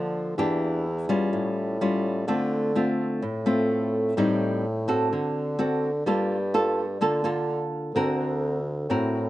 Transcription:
Already playing: D3 F3 A#3 D4
0.38 E2 E3 A#3 D4 G4
1.09 G3 C#4 F4
1.32 A2
1.81 G3 C#4 F4
2.27 D3 A3 C4 F4
2.75 A3 C4 F4
3.22 A2
3.46 A3 C4 F4
4.16 A2 G3 C4 D#4
4.88 C4 F#4 A4
5.10 D3
5.59 C4 F#4 A4
6.06 G2 G3 A#3 F4 A4
6.54 A#3 F4 A4
7.01 D3 A#3 F4 A4
7.24 A#3 F4 A4
7.94 D2 D3 C4 F#4 A#4
8.89 A2 C4 F#4 A#4

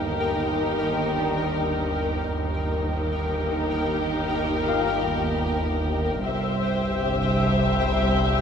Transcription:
Already playing: G1 D#2 D#4 G4 A#4 G5
1.18 D4 D5
2.33 G1 D#2 D#4 G4 A#4 G5
4.67 F4 F5
6.23 G1 C2 G4 C5 E5 G5

